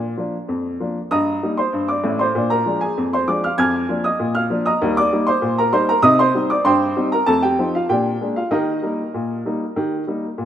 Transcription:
Already playing: A#2 F4 D5 F5
0.17 F3 A#3 D4
0.48 F2
0.80 F3 A#3 D4
1.11 G2 D#5 A#5 D#6
1.43 G3 A#3 D#4
1.57 C5 C6
1.73 G2
1.88 D5 D6
2.04 A1 A2
2.19 C5 C6
2.35 A#2 D4
2.50 A#4 A#5
2.66 F3 G#3 D4
2.81 G#4 G#5
2.97 F2
3.13 C5 C6
3.28 F3 G#3 D4 D5 D6
3.44 F5 F6
3.58 F2 G#5 F6 G#6
3.89 F3 A#3 D4
4.04 D#5 D#6
4.19 A#2
4.35 F5 F6
4.50 F3 A#3 D4
4.66 D#5 A#5 D#6
4.82 D#2 G3
4.97 D5 D6
5.12 G3 A#3 D#4
5.27 C5 C6
5.42 A#2
5.58 A#4 A#5
5.72 G3 A#3 D#4 C5 C6
5.89 A#4 A#5
6.02 C3 D#4 D#5 D#6
6.19 C5 C6
6.34 G3 C4 D#4
6.50 D5 D6
6.65 G2 C5 G5 C6
6.97 G3 C4 D#4
7.12 A#4 A#5
7.26 F2 A3 A4 A5
7.42 G4 G5
7.59 F3 C4 D#4
7.75 F4 F5
7.89 A#2 D4 G4 G5
8.21 G#3 A#3 D4
8.36 F4 F5
8.51 D#3 D#4 G4 A#4 D#5
8.83 G3 A#3 D#4
9.14 A#2
9.45 G3 A#3 D#4
9.76 D#3 G4
10.07 G3 A#3 D#4
10.38 A#2

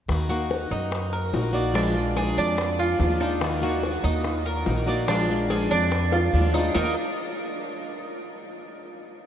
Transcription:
0.09 D#2 D#3 A#3 D#4 F#4, high bongo
0.29 A#3 D#4 F#4, high bongo
0.50 D#3 A#3 D#4 F#4, high bongo
0.71 F#2 D#4
0.91 muted steel-string acoustic guitar stroke, high bongo
1.13 A#4, high bongo
1.32 A#1 D#3 A#3 D#4 F#4, high bongo, low bongo
1.53 A#3 D#4 F#4 D5
1.73 F3 G#3 D4 F4, high bongo
1.95 G#3 D4 F4, high bongo
2.16 F3 G#3 D4 F4 G#4, high bongo
2.37 F2 D4
2.58 muted steel-string acoustic guitar stroke, high bongo
2.79 F4, high bongo
2.99 D#2 F3 G#3 D4 F4, high bongo, low bongo
3.20 G#3 D4 D#4 F4
3.41 D#3 A#3 D#4 F#4, high bongo
3.62 A#3 D#4 F#4, high bongo
3.82 D#3 A#3 D#4 F#4, high bongo
4.04 D#2 D#4
4.24 muted steel-string acoustic guitar stroke, high bongo
4.45 A#4, high bongo
4.66 A#1 D#3 A#3 D#4 F#4, high bongo, low bongo
4.87 A#3 D#4 F#4 D5
5.08 F3 G#3 D4 F4, high bongo
5.28 G#3 D4 F4, high bongo
5.49 F3 G#3 D4 F4 G#4, high bongo
5.71 F2 D4
5.91 muted steel-string acoustic guitar stroke, high bongo
6.12 F4, high bongo
6.33 D#2 F3 G#3 D4 F4
6.40 low bongo
6.54 G#3 D4 D#4 F4, low bongo
6.74 D#2 D#3 A#3 D#4 F#4 A#4 D#5, low bongo

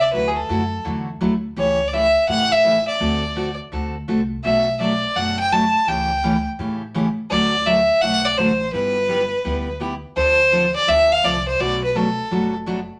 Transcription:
0.01 D5
0.13 D2 D3 F#3 A3 E4 F#4 B4
0.28 G#4
0.36 A4
0.49 F#2 D3 F#3 A3 E4 F#4
0.85 E2 D3 F#3 A3 E4 F#4
1.21 D2 D3 F#3 A3 E4 F#4
1.56 C#2 C#3 E3 A3 C#4 G4 C#5
1.88 D5
1.93 C#3 E3 A3 C#4 G4 E5
2.28 A2 C#3 E3 A3 C#4 G4 F#5
2.52 E5
2.64 C#3 E3 A3 C#4 G4
2.88 D5
3.00 D2 D3 A3 C4 F#4 A4
3.36 D3 A3 C4 F#4 A4
3.72 D2 D3 A3 C4 F#4 A4
4.08 C2 D3 A3 C4 F#4 A4
4.44 B1 B2 F#3 A3 D4 F#4 E5
4.80 B2 F#3 A3 D4 F#4 D5
5.16 F#1 B2 F#3 A3 D4 F#4 F#5
5.40 G5
5.52 B2 F#3 A3 D4 F#4 A5
5.87 C#2 C#3 E3 A3 C#4 G4 G5
6.23 C#3 E3 A3 C#4 G4
6.59 A2 C#3 E3 A3 C#4 G4
6.94 C#3 E3 A3 C#4 G4
7.31 D2 D3 F#3 A3 D4 F#4 D5
7.66 D3 F#3 A3 D4 F#4 E5
8.02 B1 D3 F#3 A3 D4 F#4 F#5
8.25 D5
8.37 A1 D3 F#3 A3 D4 F#4 C5
8.73 G1 G3 B3 E4 G4 B4
9.09 G3 B3 E4 G4
9.45 D2 G3 B3 E4 G4
9.80 G3 B3 E4 G4
10.16 D2 D3 F3 C4 D4 A4 C5
10.52 D3 F3 C4 D4 A4
10.76 D5
10.87 D2 D3 F3 C4 D4 A4 E5
11.12 F5
11.23 C2 D3 F3 C4 D4 A4 D5
11.48 C5
11.59 B1 B2 F#3 A3 D4 F#4 D5
11.84 B4
11.95 B2 F#3 A3 D4 F#4 A4
12.31 F#1 B2 F#3 A3 D4 F#4
12.66 B2 F#3 A3 D4 F#4

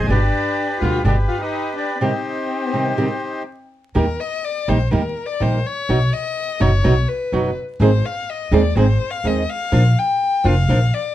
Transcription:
0.03 F#1
0.08 G1 B2 D3 G3 B3 D4 G4 B4 D5
0.80 D2 B2 D3 G3 B3 F4 G4 F5
1.04 G1 B2 D3 G3 B3 D4 G4 B4 D5
1.28 F4 F5
1.41 D#4 G4 B4 D#5
1.76 D4 D5
2.01 C3 D#3 G3 C4 D#4 G4 C5
2.73 C3 D#3 G3 C4 G4
2.97 C3 D#3 G3 C4 G4
3.95 D#2 D#3 G3 A#3 D#4 G4 A#4
4.20 D#5
4.44 D5
4.68 A#1 D#3 G3 A#3 D#4 G4 C5
4.91 D#2 D#3 G3 A#3 D#4 G4 A#4
5.26 D5
5.40 A#1 D#3 G3 A#3 D#4 G4 C5
5.66 C#5
5.89 B1 B2 F#3 B3 D#4 F#4
6.13 D#5
6.60 F#1 B2 F#3 B3 D#4 F#4 C#5
6.84 B1 B2 F#3 B3 D#4 F#4
7.08 B4
7.32 F#1 B2 F#3 B3 D#4 F#4
7.80 G#1 D#3 G#3 C4 D#4 G#4 C5
8.05 F5
8.30 D#5
8.52 D#2 D#3 G#3 C4 D#4 G#4 D5
8.76 G#1 D#3 G#3 C4 D#4 G#4 C5
9.10 F5
9.24 D#2 D#3 G#3 C4 D#4 G#4 D#5
9.49 F5
9.72 A#1 F3 A#3 D4 F4
9.98 G5
10.44 F1 F3 A#3 D4 F4 F5
10.69 A#1 F3 A#3 D4 F4
10.94 D5

